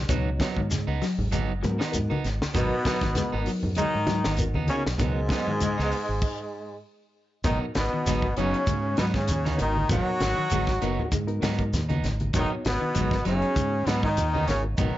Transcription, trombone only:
2.55 B3
3.78 D#4
4.70 C#4
5.01 G#3
7.45 D#4
7.77 B3
8.38 C#4
9.00 B3
9.16 C#4
9.62 D#4
9.92 F#4
12.39 D#4
12.67 B3
13.28 C#4
13.88 B3
14.05 D#4
14.48 C#4
14.78 D#4

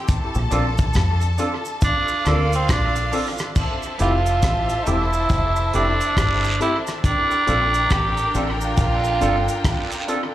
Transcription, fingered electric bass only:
0.36 A#1
0.52 A#1
0.96 F2
2.26 D2
2.69 A#1
4.00 F1
4.43 A1
4.87 E1
5.30 F1
5.74 F1
6.17 G1
7.48 A#1
7.91 A1
8.35 A1
8.78 A#1
9.22 G1

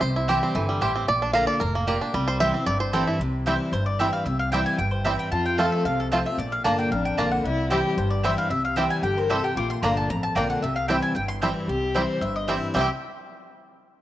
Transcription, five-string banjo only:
0.01 C5
0.16 E4
0.29 G4
0.43 C4
0.55 E3
0.69 G3
0.82 G4
0.96 C4
1.08 D5
1.22 D4
1.34 F5
1.47 D5
1.60 A#4
1.75 A#3
1.88 G4
2.01 D4
2.14 G3
2.28 C5
2.40 E5
2.54 C4
2.66 D5
2.80 C5
2.93 A4
3.07 E4
3.47 G3 C4 E4
4.00 G3 C4 E4
4.53 G3 C4 E4
5.06 G3 C4 E4
5.59 A3 C4 F4
6.13 A3 C4 F4
6.65 A#3 D4
7.18 A#3 D4
7.71 G3 C4 E4
8.25 G3 C4 E4
8.78 G3 C4 E4
9.31 G3 C4 E4
9.84 A#3 D4
10.37 A#3 D4
10.89 G3 C4 E4
11.43 G3 C4 E4
11.95 G3 C4 E4
12.49 G3 C4 E4
12.75 G3 C4 E4
12.81 G4

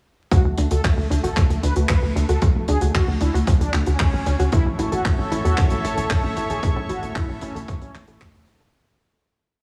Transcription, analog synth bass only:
0.31 D2
0.45 D2
0.58 D2
0.71 D2
0.84 D2
0.97 D2
1.10 D2
1.23 A1
1.37 D2
1.50 D2
1.63 D2
1.76 D2
1.89 D2
2.02 D2
2.16 D2
2.29 D2
2.42 D2
2.55 D1
2.68 D2
2.81 D2
2.95 D2
3.08 D2
3.21 D2
3.34 D2
3.47 D2
3.60 D2
3.74 D2
3.87 D2
4.00 D2
4.13 A1
4.26 D2
4.39 D2
4.53 A1
4.66 A1
4.79 A1
4.92 A1
5.05 A1
5.18 A1
5.31 A1
5.45 E2
5.58 A1
5.71 A1
5.84 A1
5.97 A1
6.10 A1
6.23 A1
6.37 A1
6.50 A1
6.63 A1
6.76 A2
6.89 A1
7.02 A1
7.16 A1
7.29 A1
7.42 A1
7.55 A1
7.68 A1
7.81 A1
7.94 A1
8.08 A1
8.21 A1
8.34 E2
8.47 A1
8.60 A1

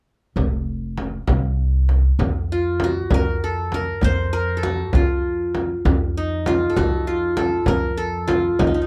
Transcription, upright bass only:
0.36 F1
1.29 C2
2.19 F2
3.11 F2
4.03 F2
4.94 F2
5.85 F2
6.77 F2
7.68 F2
8.60 F2

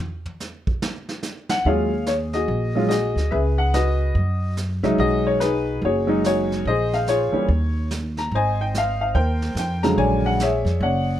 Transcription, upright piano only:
1.50 F#5
1.66 F#3 G#3 C#4 F4 G#4 C#5 F5
2.07 C#5
2.34 F#4 G#4 D#5
2.75 F#3 G#3 C#4 F4
2.89 F#4 G#4 D#5
3.31 G#4 B4 E5
3.58 F#5
3.74 F#4 B4 D#5
4.83 F#3 G#3 C#4 D#4 E5
4.99 F#4 G#4 D#5
5.27 C#5
5.40 D#4 G#4 B4
5.85 F#4 G#4 C#5
6.07 F#3 G#3 C#4 D#4
6.26 F#4 G#4 C#5
6.67 G#4 C5 D#5
6.94 F5
7.09 F4 G#4 C#5
7.32 E3 G3 A#3 C#4
8.19 A#5
8.35 C5 D#5 G#5
8.61 G5
8.78 F5
9.01 F5
9.15 A#4 C5 G5
9.59 G5
9.83 C#3 D3 F#3 G#3 A#5
9.97 C#5 D5 G#5
10.26 F#5
10.42 G#4 C#5 E5
10.83 C#5 D5 F#5

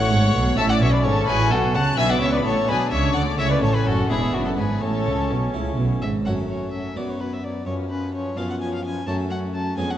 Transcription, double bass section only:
Already playing: A1
0.11 G#1
0.35 B1
0.58 A1
0.81 B1
1.05 G#1
1.28 A1
1.52 B1
1.75 C#2
1.98 B1
2.22 C#2
2.46 A1
2.69 B1
2.92 C#2
3.15 D2
3.39 C#2
3.63 A1
3.86 F#1
4.10 E1
4.34 F#1
4.58 G#1
4.82 A1
5.06 C#2
5.30 B1
5.54 C#2
5.78 B1
6.01 G#1

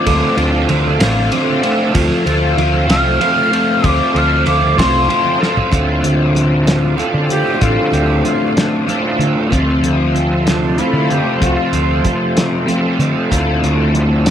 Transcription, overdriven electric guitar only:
0.06 D3 A3 C4 F4
0.37 D3 A3 C4 F4
0.68 D3 A3 C4 F4
0.99 D3 A3 C4 F4
1.31 D3 A3 C4 F4
1.63 D3 A3 C4 F4
1.93 F3 A3 C4 F4
2.26 F3 A3 C4 F4
2.56 F3 A3 C4 F4
2.87 F3 A3 C4 F4
3.20 F3 A3 C4 F4
3.51 F3 A3 C4 F4
3.83 F3 A3 C4 F4
4.14 F3 A3 C4 F4
4.46 F3 A3 C4 F4
4.77 F3 A3 C4 F4
5.09 F3 A3 C4 F4
5.39 F3 A3 C4 F4
5.71 D2 A2 D3 A3 C4 F4
6.96 D2 A2 D3 A3 C4 F4
7.60 D2 A2 D3 A3 C4 F4
8.86 D2 A2 D3 A3 C4 F4
9.50 F2 C3 F3 A3 C4 F4
10.78 F2 C3 F3 A3 C4 F4
11.40 F2 C3 F3 A3 C4 F4
12.66 F2 C3 F3 A3 C4 F4
13.30 D2 A2 D3 A3 C4 F4

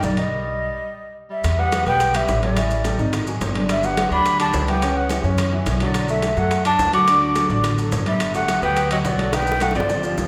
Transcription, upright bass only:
0.03 B1
1.44 E2
1.86 B1
2.28 A1
2.99 G#1
3.41 G1
4.10 D2
4.53 C#2
5.23 F#2
5.66 B1
6.37 F#2
6.79 D2
7.49 A1
7.91 G1
8.62 D2
9.04 B1
9.74 G1
10.17 C2

